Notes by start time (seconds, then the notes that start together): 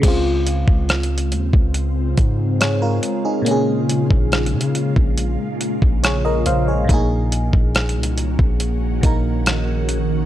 0.00 C#2 C#3 G#3 C4 F4, kick, closed hi-hat, crash
0.05 C4 F4
0.47 closed hi-hat
0.68 C#2, kick
0.89 cross-stick, closed hi-hat
1.03 closed hi-hat
1.18 closed hi-hat
1.32 D#2, closed hi-hat
1.53 C#2, kick
1.74 closed hi-hat
2.17 G#2, kick, closed hi-hat
2.61 G#4 C#5, cross-stick, closed hi-hat
2.82 F4 A#4
3.03 closed hi-hat
3.25 D#4 G#4
3.42 A#2 A#3
3.46 A#3 C#4, closed hi-hat
3.51 G#4
3.89 closed hi-hat
4.11 A#1, kick
4.32 cross-stick, closed hi-hat
4.46 closed hi-hat
4.53 C#3
4.61 closed hi-hat
4.75 closed hi-hat
4.96 A#1, kick
5.18 closed hi-hat
5.61 closed hi-hat
5.82 A#1, kick
6.03 G#4 C#5, cross-stick, closed hi-hat
6.25 A#4 D#5
6.46 A#1 C5 F5, closed hi-hat
6.68 G#4 C#5
6.84 A#2 A3
6.89 A#1 D#3 A#3 C#4 D#4 F#4, kick, closed hi-hat
6.94 A#3 G#4
7.32 closed hi-hat
7.53 A#1, kick
7.75 cross-stick, closed hi-hat
7.89 closed hi-hat
7.96 C2
8.03 closed hi-hat
8.18 closed hi-hat
8.39 A#1, kick
8.60 closed hi-hat
9.01 A#1 A#2 A#3 D#4, kick, closed hi-hat
9.06 A#4
9.46 cross-stick, closed hi-hat
9.89 closed hi-hat